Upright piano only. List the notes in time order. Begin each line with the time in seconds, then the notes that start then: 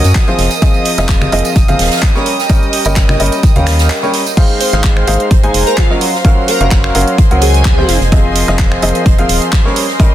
Already playing: F#3 C#4 F#4 A#4 F#5
0.28 F3 C4 F4 G#4 C5
0.62 F3 C4 F4 G#4 D#5
0.98 F3 C4 F4 G#4 D#5
1.32 F3 C4 F4 G#4 D#5
1.68 F3 C4 F4 G#4 F5
2.15 G3 C#4 G4 A#4 C#5
2.50 G3 C#4 G4 A#4 D#5
2.86 G3 C#4 G4 A#4 D#5
3.20 G3 C#4 G4 A#4 D#5
3.56 G3 C#4 G4 A#4 F5
4.03 G3 C#4 G4 A#4 C#5
4.37 G#3 D#4 G#4 C5 F5
4.73 G#3 D#4 G#4 C5 F5
5.08 G#3 D#4 G#4 C5 F5
5.43 G#3 D#4 G#4 C5 G#5
5.90 F#3 C#4 F#4 A#4 D#5
6.25 F#3 C#4 F#4 A#4 F5
6.61 F#3 C#4 F#4 A#4 F5
6.95 F#3 C#4 F#4 A#4 F5
7.31 F#3 C#4 F#4 A#4 F#5
7.78 F3 C4 F4 G#4 C5
8.12 F3 C4 F4 G#4 D#5
8.48 F3 C4 F4 G#4 D#5
8.82 F3 C4 F4 G#4 D#5
9.19 F3 C4 F4 G#4 F5
9.65 G3 C#4 G4 A#4 C#5
10.00 G3 C#4 G4 A#4 D#5